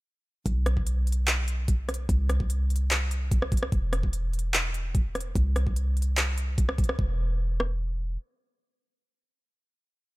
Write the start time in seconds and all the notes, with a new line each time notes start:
0.46 B1, kick, closed hi-hat
0.66 cross-stick, closed hi-hat
0.77 kick
0.87 closed hi-hat
1.07 closed hi-hat
1.12 closed hi-hat
1.27 clap, closed hi-hat
1.48 closed hi-hat
1.68 kick, closed hi-hat
1.89 cross-stick, closed hi-hat
1.94 closed hi-hat
2.09 C2, kick, closed hi-hat
2.29 cross-stick, closed hi-hat
2.40 kick
2.50 closed hi-hat
2.70 closed hi-hat
2.76 closed hi-hat
2.91 clap, closed hi-hat
3.11 closed hi-hat
3.31 kick, closed hi-hat
3.42 cross-stick
3.52 kick, closed hi-hat
3.57 closed hi-hat
3.63 cross-stick
3.72 E1, kick, closed hi-hat
3.93 cross-stick, closed hi-hat
4.03 kick
4.13 closed hi-hat
4.33 closed hi-hat
4.39 closed hi-hat
4.54 clap, closed hi-hat
4.74 closed hi-hat
4.95 kick, closed hi-hat
5.15 cross-stick, closed hi-hat
5.21 closed hi-hat
5.35 C2, kick, closed hi-hat
5.56 cross-stick, closed hi-hat
5.67 kick
5.76 closed hi-hat
5.97 closed hi-hat
6.02 closed hi-hat
6.17 clap, closed hi-hat
6.38 closed hi-hat
6.58 kick, closed hi-hat
6.69 cross-stick
6.78 kick, closed hi-hat
6.84 closed hi-hat
6.89 cross-stick
6.99 E1, kick
7.60 cross-stick